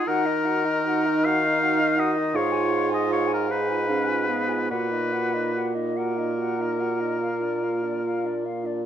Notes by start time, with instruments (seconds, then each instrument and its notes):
0.07 bassoon D#3, clarinet D#4, french horn F#4, oboe A#4, flute F#5
0.25 french horn D#4, flute D#5
0.45 french horn F#4, flute F#5
0.65 french horn D#4, flute D#5
0.86 french horn F#4, flute F#5
1.06 french horn D#4, flute D#5
1.25 french horn F#4, oboe F5, flute F#5
1.44 french horn D#4, flute D#5
1.61 french horn F#4, flute F#5
1.78 french horn D#4, flute D#5
1.96 french horn F#4, oboe D#5, flute F#5
2.13 flute D#5
2.17 french horn D#4
2.32 bassoon G#2, clarinet F4, french horn G#4, oboe C#5, flute F5
2.52 french horn F4, flute G#5
2.70 french horn G#4, flute F5
2.89 french horn F4, flute G#5
2.94 oboe D#5
3.09 french horn G#4, oboe C#5, flute F5
3.27 french horn F4, flute G#5
3.33 oboe A#4
3.47 clarinet D#4, french horn G#4, flute F5
3.51 oboe B4
3.68 french horn F4, flute G#5
3.86 clarinet C#4, french horn G#4, flute F5
4.05 french horn F4, flute G#5
4.25 clarinet B3, french horn G#4, flute F5
4.48 french horn F4, flute G#5
4.68 bassoon A#2, clarinet A#3, french horn F#4, oboe B4, flute F#5
4.91 french horn D#4, flute D#5
5.12 french horn F#4, flute F#5
5.33 french horn D#4, flute D#5
5.55 french horn F#4, flute F#5
5.74 french horn D#4, flute D#5
5.96 french horn F#4, oboe A#4, flute F#5
6.16 french horn D#4, flute D#5
6.38 french horn F#4, flute F#5
6.58 french horn D#4, flute D#5
6.79 french horn F#4, flute F#5
7.00 french horn D#4, flute D#5
7.20 french horn F4, flute F5
7.41 french horn D4, flute D5
7.62 french horn F4, flute F5
7.83 french horn D4, flute D5
8.04 french horn F4, flute F5
8.25 french horn D4, flute D5
8.44 french horn F4, flute F5
8.65 french horn D4, flute D5